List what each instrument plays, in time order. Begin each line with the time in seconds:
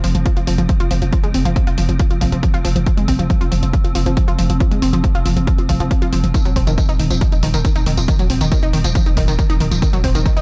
Already playing: synth drone F3 C4
0.04 808-style bass F1, synth arpeggio sound F3, open hi-hat
0.15 808-style bass F1, synth arpeggio sound F3, closed hi-hat
0.26 synth arpeggio sound F3, kick, closed hi-hat
0.37 808-style bass F1, synth arpeggio sound F4, closed hi-hat
0.47 808-style bass F1, synth arpeggio sound F3, open hi-hat
0.58 808-style bass F1, synth arpeggio sound F3, closed hi-hat
0.69 synth arpeggio sound F3, kick, closed hi-hat
0.80 808-style bass F1, synth arpeggio sound F4, closed hi-hat
0.91 808-style bass F1, synth arpeggio sound F3, open hi-hat
1.02 808-style bass F1, synth arpeggio sound F3, closed hi-hat
1.13 synth arpeggio sound F3, kick, closed hi-hat
1.24 808-style bass F1, synth arpeggio sound G#3, closed hi-hat
1.34 808-style bass F1, synth arpeggio sound C4, open hi-hat
1.45 808-style bass F1, synth arpeggio sound F3, closed hi-hat
1.56 synth arpeggio sound F3, kick, closed hi-hat
1.67 808-style bass F1, synth arpeggio sound F4, closed hi-hat
1.78 808-style bass F1, synth arpeggio sound F3, open hi-hat
1.89 808-style bass F1, synth arpeggio sound F3, closed hi-hat
1.99 synth arpeggio sound F3, kick, closed hi-hat
2.11 808-style bass F1, synth arpeggio sound F4, closed hi-hat
2.21 808-style bass F1, synth arpeggio sound F3, kick, open hi-hat
2.32 808-style bass F1, synth arpeggio sound F3, closed hi-hat
2.43 synth arpeggio sound F3, kick, closed hi-hat
2.54 808-style bass F1, synth arpeggio sound F4, closed hi-hat
2.65 808-style bass F1, synth arpeggio sound F3, open hi-hat
2.76 808-style bass F1, synth arpeggio sound F3, closed hi-hat
2.86 synth arpeggio sound F3, kick, closed hi-hat
2.97 808-style bass F1, synth arpeggio sound G#3, closed hi-hat
3.08 808-style bass F1, synth arpeggio sound C4, kick, open hi-hat
3.19 808-style bass F1, synth arpeggio sound F3, closed hi-hat
3.30 synth arpeggio sound F3, kick, closed hi-hat
3.41 808-style bass F1, synth arpeggio sound F4, closed hi-hat
3.52 808-style bass F1, synth arpeggio sound F3, open hi-hat
3.63 808-style bass F1, synth arpeggio sound F3, closed hi-hat
3.73 synth arpeggio sound F3, kick, closed hi-hat
3.84 808-style bass F1, synth arpeggio sound F4, closed hi-hat
3.95 808-style bass F1, synth arpeggio sound F3, open hi-hat
4.06 808-style bass F1, synth arpeggio sound F3, closed hi-hat
4.17 synth arpeggio sound F3, kick, closed hi-hat
4.28 808-style bass F1, synth arpeggio sound F4, closed hi-hat
4.39 808-style bass F1, synth arpeggio sound F3, open hi-hat
4.50 808-style bass F1, synth arpeggio sound F3, closed hi-hat
4.60 synth arpeggio sound F3, kick, closed hi-hat
4.71 808-style bass F1, synth arpeggio sound G#3, closed hi-hat
4.82 808-style bass F1, synth arpeggio sound C4, open hi-hat
4.93 808-style bass F1, synth arpeggio sound F3, closed hi-hat
5.04 synth arpeggio sound F3, kick, closed hi-hat
5.15 808-style bass F1, synth arpeggio sound F4, closed hi-hat
5.26 808-style bass F1, synth arpeggio sound F3, open hi-hat
5.37 808-style bass F1, synth arpeggio sound F3, closed hi-hat
5.47 synth arpeggio sound F3, kick, closed hi-hat
5.58 808-style bass F1, synth arpeggio sound F4, closed hi-hat
5.69 808-style bass F1, synth arpeggio sound F3, kick, open hi-hat
5.80 808-style bass F1, synth arpeggio sound F3, closed hi-hat
5.91 synth arpeggio sound F3, kick, closed hi-hat
6.02 808-style bass F1, synth arpeggio sound F4, closed hi-hat
6.12 808-style bass F1, synth arpeggio sound F3, open hi-hat
6.23 808-style bass F1, synth arpeggio sound F3, closed hi-hat
6.34 synth arpeggio sound D#3, kick, closed hi-hat, tambourine
6.45 808-style bass D#1, synth arpeggio sound F#3, closed hi-hat, tambourine
6.56 808-style bass D#1, synth arpeggio sound C4, kick, open hi-hat
6.67 808-style bass D#1, synth arpeggio sound D#3, closed hi-hat, tambourine
6.78 synth arpeggio sound D#3, kick, closed hi-hat, tambourine
6.89 808-style bass D#1, synth arpeggio sound D#4, closed hi-hat, tambourine
7.00 808-style bass D#1, synth arpeggio sound D#3, open hi-hat
7.10 808-style bass D#1, synth arpeggio sound F3, closed hi-hat, tambourine
7.21 synth arpeggio sound F3, kick, closed hi-hat, tambourine
7.32 808-style bass D#1, synth arpeggio sound D#4, closed hi-hat, tambourine
7.43 808-style bass D#1, synth arpeggio sound D#3, open hi-hat
7.54 808-style bass D#1, synth arpeggio sound D#3, closed hi-hat, tambourine
7.65 synth arpeggio sound D#3, kick, closed hi-hat, tambourine
7.76 808-style bass D#1, synth arpeggio sound D#4, closed hi-hat, tambourine
7.86 808-style bass D#1, synth arpeggio sound D#3, open hi-hat
7.97 808-style bass D#1, synth arpeggio sound F3, closed hi-hat, tambourine
8.08 synth arpeggio sound D#3, kick, closed hi-hat, tambourine
8.19 808-style bass D#1, synth arpeggio sound F#3, closed hi-hat, tambourine
8.30 808-style bass D#1, synth arpeggio sound C4, open hi-hat
8.41 808-style bass D#1, synth arpeggio sound D#3, closed hi-hat, tambourine
8.52 synth arpeggio sound D#3, kick, closed hi-hat, tambourine
8.63 808-style bass D#1, synth arpeggio sound D#4, closed hi-hat, tambourine
8.73 808-style bass D#1, synth arpeggio sound D#3, open hi-hat
8.84 808-style bass D#1, synth arpeggio sound F3, closed hi-hat, tambourine
8.95 synth arpeggio sound F3, kick, closed hi-hat, tambourine
9.06 808-style bass D#1, synth arpeggio sound D#4, closed hi-hat, tambourine
9.17 808-style bass D#1, synth arpeggio sound D#3, kick, open hi-hat
9.28 808-style bass D#1, synth arpeggio sound D#3, closed hi-hat, tambourine
9.39 synth arpeggio sound D#3, kick, closed hi-hat, tambourine
9.50 808-style bass D#1, synth arpeggio sound D#4, closed hi-hat, tambourine
9.60 808-style bass D#1, synth arpeggio sound D#3, open hi-hat
9.71 808-style bass D#1, synth arpeggio sound F3, closed hi-hat, tambourine
9.82 synth arpeggio sound D#3, kick, closed hi-hat, tambourine
9.93 808-style bass D#1, synth arpeggio sound F#3, closed hi-hat, tambourine
10.04 808-style bass D#1, synth arpeggio sound C4, kick, open hi-hat
10.15 808-style bass D#1, synth arpeggio sound D#3, closed hi-hat, tambourine
10.26 synth arpeggio sound D#3, kick, closed hi-hat, tambourine
10.37 808-style bass D#1, synth arpeggio sound D#4, closed hi-hat, tambourine